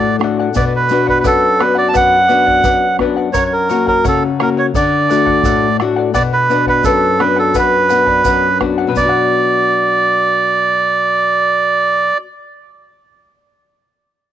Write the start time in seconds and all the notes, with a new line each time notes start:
Already playing: A2 A4 D5 F#5
0.19 A3 D4 F#4 A4, bombo rim
0.23 D5 F#5
0.39 D5 F#5
0.54 B2 B4 D5 F#5, bombo low, shaker
0.67 D5
0.76 B4
0.89 B3 D4 F#4 B4 D5 F#5, shaker
1.07 B4 D5 F#5, bombo low
1.20 F#2 B4
1.24 A4 B4 D5 F#5, bombo low, shaker
1.59 B3 D4 F#4 B4 D5 F#5, bombo rim
1.75 D5 F#5
1.89 A5
1.94 F#2 B4 D5 F#5, bombo low, shaker
2.28 B3 D4 F#4 B4 D5 F#5, shaker
2.46 D5 F#5, bombo low
2.63 F#2 B4 D5 F#5, bombo low, shaker
2.99 B3 D4 F#4 B4 D5 F#5, bombo rim, bombo low
3.16 D5 F#5
3.33 F#2 A#4 C#5 F#5, bombo low, shaker
3.46 C#5
3.53 A#4
3.69 A#3 C#4 F#4 A#4 C#5 F#5, shaker
3.87 A#4 C#5 F#5, bombo low
4.04 C#3 A4 C#5 F#5, bombo low, shaker
4.39 A#3 C#4 F#4 A#4 C#5 F#5, bombo rim
4.57 C#5 F#5
4.74 D3 A4 D5 F#5, bombo low, shaker
5.09 A3 D4 F#4 A4 D5 F#5, shaker
5.26 D5 F#5, bombo low
5.43 A2 A4 D5 F#5, bombo low, shaker
5.80 A3 D4 F#4 A4 D5 F#5, bombo rim
5.96 D5 F#5
6.14 B2 B4 D5 F#5, bombo low, shaker
6.33 B4
6.50 B3 D4 F#4 B4 D5 F#5, shaker
6.66 B4 D5 F#5, bombo low
6.84 F#2 A4 B4 D5 F#5, bombo low, shaker
7.19 B3 D4 F#4 B4 D5 F#5, bombo rim
7.36 A4 D5 F#5
7.54 F#2 B4 D5 F#5, bombo low, shaker
7.59 B4
7.89 B3 D4 F#4 B4 D5 F#5, shaker
8.07 D5 F#5, bombo low
8.24 F#2 B4 D5 F#5, bombo low, shaker
8.59 B3 D4 F#4 B4 D5 F#5, bombo rim, bombo low
8.78 D5 F#5
8.87 B2 B4
8.92 F#3 B3
8.96 D5, bombo low, shaker
9.00 D4 D5
9.05 F#4 F#5